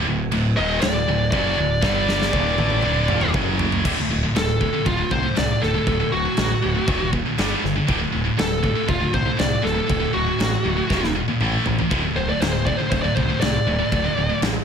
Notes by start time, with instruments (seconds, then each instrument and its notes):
0.06 picked electric bass D1, distorted electric guitar D2 A2
0.32 picked electric bass D1, distorted electric guitar D2 A2, crash
0.57 picked electric bass D#1, distorted electric guitar D#2 A#2 D#3, lead electric guitar D#5
0.81 picked electric bass D1, distorted electric guitar D2 A2, lead electric guitar D5, snare, crash
1.08 picked electric bass D1, distorted electric guitar D2 A2
1.31 picked electric bass F#1, distorted electric guitar F#2 C#3 F#3, lead electric guitar D5, kick, crash
1.58 picked electric bass D1, distorted electric guitar D2 A2
1.81 picked electric bass G1, distorted electric guitar G2 D3 G3, kick, snare
2.09 snare
2.22 snare
2.33 picked electric bass D#1, distorted electric guitar D#2 A#2 D#3, kick, high tom
2.58 picked electric bass A1, distorted electric guitar A2 E3 A3, high tom
2.70 mid tom
2.82 picked electric bass D1, distorted electric guitar D2 A2 D3, mid tom
3.08 picked electric bass D#1, distorted electric guitar D#2 A#2 D#3, mid tom
3.21 mid tom
3.34 picked electric bass F#1, distorted electric guitar F#2 C#3 F#3, kick, mid tom
3.59 floor tom
3.72 floor tom
3.85 picked electric bass D1, distorted electric guitar D2 A2 D3, kick, crash
3.97 distorted electric guitar D2 A2
4.10 picked electric bass D1, distorted electric guitar D2 A2
4.23 distorted electric guitar D2 A2
4.35 picked electric bass D1, distorted electric guitar D2 A2, lead electric guitar A4, snare, crash
4.60 distorted electric guitar D2 A2, kick
4.73 distorted electric guitar D2 A2
4.85 picked electric bass D1, distorted electric guitar D2 A2, lead electric guitar F4, kick, crash
4.98 distorted electric guitar D2 A2
5.11 picked electric bass C2, distorted electric guitar D2 A2, lead electric guitar C5, kick
5.23 distorted electric guitar D2 A2
5.35 picked electric bass C2, distorted electric guitar D2 A2, lead electric guitar D5, snare, crash
5.62 picked electric bass D1, distorted electric guitar D2 A2, lead electric guitar A4, snare
5.74 distorted electric guitar D2 A2
5.87 picked electric bass D1, distorted electric guitar D2 A2, kick, crash
6.00 distorted electric guitar D2 A2
6.12 picked electric bass D1, distorted electric guitar D2 A2, lead electric guitar F#4
6.25 distorted electric guitar D2 A2
6.37 picked electric bass A1, distorted electric guitar D2 A2, snare, crash
6.63 picked electric bass D1, distorted electric guitar D2 A2
6.75 distorted electric guitar D2 A2
6.87 picked electric bass D#1, distorted electric guitar D#2 A#2 D#3, kick, crash
7.01 distorted electric guitar D#2 A#2
7.12 distorted electric guitar D#2 A#2, kick
7.25 distorted electric guitar D#2 A#2
7.38 picked electric bass G1, distorted electric guitar G2 D3 G3, snare, crash
7.63 picked electric bass G1, distorted electric guitar G2 D3, snare
7.76 distorted electric guitar G2 D3
7.87 picked electric bass D1, distorted electric guitar D2 A2 D3, kick, crash
8.00 distorted electric guitar D2 A2
8.13 picked electric bass D1, distorted electric guitar D2 A2
8.25 distorted electric guitar D2 A2
8.38 picked electric bass D1, distorted electric guitar D2 A2, lead electric guitar A4, snare, crash
8.63 distorted electric guitar D2 A2, kick
8.75 distorted electric guitar D2 A2
8.88 picked electric bass D1, distorted electric guitar D2 A2, lead electric guitar F4, kick, crash
9.00 distorted electric guitar D2 A2
9.13 picked electric bass C2, distorted electric guitar D2 A2, lead electric guitar C5, kick
9.25 distorted electric guitar D2 A2
9.37 picked electric bass C2, distorted electric guitar D2 A2, lead electric guitar D5, snare, crash
9.62 picked electric bass D1, distorted electric guitar D2 A2, lead electric guitar A4, snare
9.74 distorted electric guitar D2 A2
9.87 picked electric bass D1, distorted electric guitar D2 A2, kick, crash
10.00 distorted electric guitar D2 A2
10.13 picked electric bass D1, distorted electric guitar D2 A2, lead electric guitar F#4
10.26 distorted electric guitar D2 A2
10.39 picked electric bass A1, distorted electric guitar D2 A2, snare, crash
10.65 picked electric bass D1, distorted electric guitar D2 A2
10.77 distorted electric guitar D2 A2
10.89 picked electric bass D#1, distorted electric guitar D#2 A#2 D#3, kick, snare
11.02 distorted electric guitar D#2 A#2, snare
11.15 distorted electric guitar D#2 A#2
11.28 distorted electric guitar D#2 A#2, high tom
11.40 picked electric bass A1, distorted electric guitar A2 E3 A3, mid tom
11.65 picked electric bass A1, distorted electric guitar A2 E3, floor tom
11.79 distorted electric guitar A2 E3, floor tom
11.90 picked electric bass D1, distorted electric guitar D2 A2 D3, kick, crash
12.04 distorted electric guitar D2 A2
12.16 picked electric bass D1, distorted electric guitar D2 A2, lead electric guitar C5
12.29 distorted electric guitar D2 A2, lead electric guitar D5
12.40 picked electric bass D1, distorted electric guitar D2 A2, lead electric guitar C5, snare, crash
12.53 lead electric guitar C5
12.66 distorted electric guitar D2 A2, lead electric guitar D5, kick
12.77 distorted electric guitar D2 A2, lead electric guitar C5
12.90 picked electric bass D1, distorted electric guitar D2 A2, lead electric guitar C5, kick, crash
13.02 distorted electric guitar D2 A2, lead electric guitar D5
13.15 picked electric bass C2, distorted electric guitar D2 A2, lead electric guitar C5, kick
13.29 distorted electric guitar D2 A2
13.40 picked electric bass C2, distorted electric guitar D2 A2, lead electric guitar D5, snare, crash
13.66 picked electric bass D1, distorted electric guitar D2 A2
13.79 distorted electric guitar D2 A2
13.92 picked electric bass D1, distorted electric guitar D2 A2, kick, crash
14.05 distorted electric guitar D2 A2
14.16 picked electric bass D1, distorted electric guitar D2 A2
14.30 distorted electric guitar D2 A2
14.42 picked electric bass A1, distorted electric guitar D2 A2, snare, crash